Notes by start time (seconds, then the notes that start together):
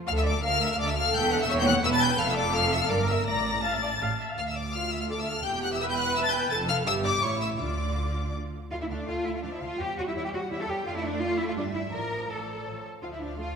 0.07 D2 A4 F5 F6
0.16 E5 E6
0.25 D5 D6
0.43 D2 A#4 F5 F6
0.61 E5 E6
0.72 F5 F6
0.79 D2 A4 D5 D6
0.89 E5 E6
0.97 F5 F6
1.14 E1 E2 G5 G6
1.32 F#5 F#6
1.41 E5 E6
1.49 E1 E2 C#5 E5 E6
1.58 G5 G6
1.67 F#5 F#6
1.84 E1 E2 B4 E5 E6
1.92 A5 A6
2.02 G5 G6
2.19 F1 F2 A4 F5 F6
2.28 E5 E6
2.37 D5 D6
2.54 F5 F6
2.72 E5 E6
2.81 F5 F6
2.89 G1 G2 A#4 D5 D6
3.08 E5 E6
3.27 A1 A2 D5 A#5 A#6
3.63 F5 A5 A6
3.73 E5
3.82 D5
4.01 A1 A2 F5
4.20 E5
4.30 F5
4.37 D2 F5 F6
4.46 E5 E6
4.55 D5 D6
4.73 F4 F5 F6
4.91 E5 E6
5.01 F5 F6
5.10 A4 D5 D6
5.19 E5 E6
5.27 F5 F6
5.44 E1 E2 G4 G5 G6
5.62 F#5 F#6
5.72 E5 E6
5.80 B4 E5 E6
5.90 G5 G6
5.98 F#5 F#6
6.16 E5 E6
6.24 A5 A6
6.32 G5 G6
6.50 F1 F2 A4 A5 A6
6.69 F5 F6
6.86 G1 G2 G4 E5 E6
7.04 D5 D6
7.22 A1 A2 E4 C#5 C#6
7.41 E5 E6
7.59 D2 D3 F4 D5 D6
8.71 D2 A3 F4 F5
8.81 E4 E5
8.90 D2 D4 D5 F5
9.07 D2 F4 F5
9.25 D2 E4 E5 F5
9.35 F4 F5
9.43 D2 F3 D4 D5 F5
9.53 E4 E5
9.61 D2 F4 F5
9.79 E2 G3 G4 C#5 G5
9.97 E2 F#4 C#5 F#5
10.07 E4 E5
10.15 E2 E4 C#5 E5
10.24 G4 G5
10.32 E2 F#4 C#5 F#5
10.50 E2 E4 C#5 E5
10.60 A4 A5
10.68 E2 G4 C#5 G5
10.85 F2 A3 F4 D5 F5
10.96 E4 E5
11.04 D4 D5
11.22 F4 D5 F5
11.38 E4 E5
11.48 F4 F5
11.56 G1 G3 D4 D5 E5
11.74 E4 E5
11.92 A1 F3 A#4 D5 A#5
12.29 A4 D5 A5
12.65 A1 C#5
13.02 D2 F3 F4 F5
13.13 E4 E5
13.21 D4 D5
13.38 A3 F4 F5